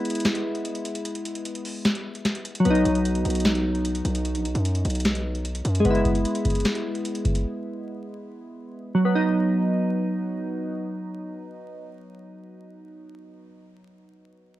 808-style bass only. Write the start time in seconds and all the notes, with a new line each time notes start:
2.65 B1
2.85 B1
3.25 B1
4.05 B1
4.35 A#1
4.45 B1
4.55 F#2
4.85 B1
5.65 F#2